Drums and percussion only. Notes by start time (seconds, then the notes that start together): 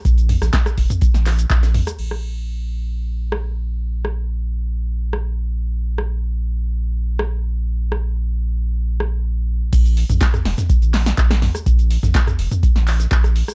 0.05 kick, closed hi-hat, shaker
0.18 closed hi-hat, shaker
0.29 closed hi-hat, mid tom, open hi-hat
0.42 cross-stick, snare, closed hi-hat, shaker
0.53 kick, snare, clap, closed hi-hat, shaker
0.66 cross-stick, closed hi-hat, shaker
0.78 kick, closed hi-hat, open hi-hat
0.90 closed hi-hat, mid tom, shaker
1.01 kick, closed hi-hat, shaker
1.14 snare, closed hi-hat, shaker
1.26 snare, clap, closed hi-hat, open hi-hat
1.39 closed hi-hat, shaker
1.50 kick, clap, closed hi-hat, shaker
1.63 snare, closed hi-hat, shaker
1.74 mid tom, open hi-hat
1.87 cross-stick, closed hi-hat, shaker
1.99 crash
2.11 cross-stick
3.32 cross-stick
4.05 cross-stick
5.13 cross-stick
5.98 cross-stick
7.19 cross-stick
7.92 cross-stick
9.00 cross-stick
9.73 kick, closed hi-hat, crash, shaker
9.85 closed hi-hat, shaker
9.97 closed hi-hat, open hi-hat
10.10 closed hi-hat, mid tom, shaker
10.21 kick, snare, clap, closed hi-hat, shaker
10.34 cross-stick, closed hi-hat, mid tom, shaker
10.45 snare, closed hi-hat, open hi-hat
10.58 snare, closed hi-hat, mid tom, shaker
10.70 kick, closed hi-hat, shaker
10.82 closed hi-hat, shaker
10.94 snare, clap, closed hi-hat, open hi-hat
11.06 snare, closed hi-hat, shaker
11.17 kick, snare, clap, closed hi-hat, shaker
11.31 cross-stick, snare, closed hi-hat, shaker
11.42 snare, closed hi-hat, mid tom, open hi-hat
11.55 cross-stick, closed hi-hat, shaker
11.66 kick, closed hi-hat, shaker
11.79 closed hi-hat, shaker
11.91 closed hi-hat, open hi-hat
12.03 snare, closed hi-hat, mid tom, shaker
12.15 kick, snare, clap, closed hi-hat, shaker
12.27 cross-stick, closed hi-hat, mid tom, shaker
12.39 closed hi-hat, open hi-hat
12.52 closed hi-hat, mid tom, shaker
12.63 kick, closed hi-hat, shaker
12.76 snare, closed hi-hat, shaker
12.87 clap, closed hi-hat, open hi-hat
13.00 snare, closed hi-hat, shaker
13.11 kick, snare, clap, closed hi-hat, shaker
13.24 cross-stick, closed hi-hat, shaker
13.36 closed hi-hat, open hi-hat
13.48 cross-stick, closed hi-hat, shaker